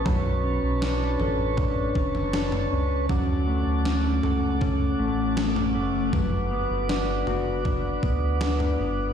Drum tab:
SD |----o-------o---|----o-------o---|----o-------o---|
FT |o-----o-o--o-o--|o-----o-o----o--|o-----o-o----o--|
BD |o-------o-o-----|o-------o-------|o-------o-o-----|